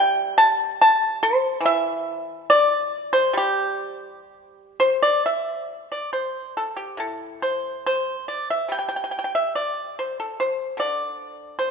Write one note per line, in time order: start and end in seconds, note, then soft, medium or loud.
0.00 0.76 E3 medium
0.00 2.47 G3 medium
0.00 0.33 G5 loud
0.38 0.76 A5 loud
0.81 1.19 A5 loud
1.23 1.60 C5 loud
1.61 4.29 E3 medium
1.66 2.45 E5 loud
2.50 3.10 D5 loud
3.13 3.34 C5 loud
3.33 6.12 G3 medium
3.37 4.75 G4 loud
4.80 5.01 C5 loud
5.03 5.24 D5 loud
5.26 5.88 E5 medium
5.92 6.12 D5 medium
6.13 6.53 C5 medium
6.57 6.76 A4 medium
6.77 6.97 G4 medium
6.97 9.55 A2 soft
6.97 7.40 A4 medium
7.42 7.82 C5 medium
7.86 8.26 C5 medium
8.28 8.48 D5 medium
8.50 8.70 E5 medium
8.69 10.77 G3 soft
8.69 8.77 G5 medium
8.79 8.85 G5 medium
8.89 8.94 G5 medium
8.96 9.02 G5 medium
9.04 9.09 G5 medium
9.11 9.17 G5 medium
9.19 9.23 G5 medium
9.24 9.31 G5 medium
9.35 9.55 E5 medium
9.55 9.95 D5 medium
9.99 10.18 C5 medium
10.20 10.38 A4 medium
10.40 10.77 C5 medium
10.77 11.71 D3 medium
10.77 11.55 D5 medium
11.59 11.71 C5 medium